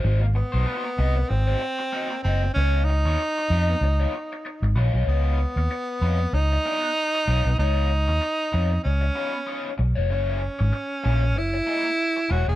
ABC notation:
X:1
M:4/4
L:1/16
Q:"Swing 16ths" 1/4=96
K:Db
V:1 name="Overdriven electric guitar"
[B,EGc] z2 [B,EGc] [B,EGc] z [B,EGe] z2 [B,EGc] z2 [B,EGe] z [B,EGe] z | [_CEFd] z2 [CEFd] z2 [CEFe] z2 [CEFd] z4 [CEFd] [CEFd] | [_CEFd]2 z4 [CEFd] z3 [CEFe] z3 [CEFd] z | [_CEFd]2 z4 [CEFd] z3 [CEFd] z [CEFd] z2 [CEFd] |
[B,_FAd]2 z4 [B,FAd] z3 [B,FAe] z3 [B,FAd] z |]
V:2 name="Tenor saxophone"
z2 _C6 =C6 C2 | D2 E12 z2 | _C8 E8 | E8 D6 z2 |
D8 _F6 G A |]
V:3 name="Fingered electric bass" clef=bass
A,,,3 _C,, z2 =C,,2 A,,,2 z4 G,,,2 | D,,3 E,, z2 F,,2 D,,2 z3 A,,, B,,, _C,, | D,,3 E,, z2 F,,2 D,,2 z4 _C,, C,, | D,,3 E,, z2 F,,2 D,,2 z4 _C,, F,,, |
G,,,3 A,,, z2 B,,,2 G,,,2 z4 _F,,, F,,, |]